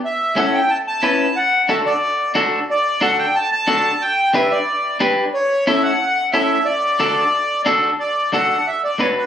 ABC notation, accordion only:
X:1
M:4/4
L:1/8
Q:1/4=181
K:D
V:1 name="Accordion"
e2 f g a a3 | f2 e d3 z2 | d2 f g a a3 | g2 e d3 z2 |
c2 e f3 e2 | d6 z2 | d2 f2 e d c B |]